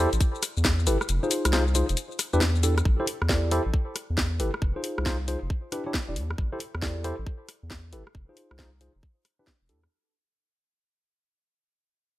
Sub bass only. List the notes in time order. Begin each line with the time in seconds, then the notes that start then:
0.13 A1
0.57 E2
0.87 G1
1.09 F1
1.45 C2
1.89 F1
2.34 E2
2.85 A1
3.22 E2
3.66 A1
4.10 E2
4.40 G1
4.62 F1
4.98 C2
5.42 F1
6.08 E1
6.16 E2
6.38 A1
6.75 E2
7.19 A1
7.63 E2
7.93 G1
8.15 F1
8.51 C2
8.95 F1
9.61 E1
9.69 E2